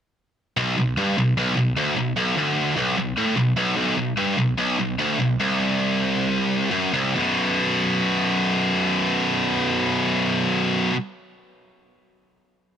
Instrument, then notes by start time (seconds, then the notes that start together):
distorted electric guitar
0.57 B1
0.78 B1
0.97 G2
1.18 B1
1.37 B1
1.57 B1
1.77 D2
1.97 B1
2.17 B1
2.37 D2
2.77 B1
2.97 B1
3.17 A2
3.37 B1
3.57 B1
3.77 B1
3.97 B1
4.17 G2
4.38 B1
4.58 B1
4.79 B1
4.99 D2
5.20 B1
5.40 C2
6.71 F#2
6.93 C2
7.15 B1 F#2 B2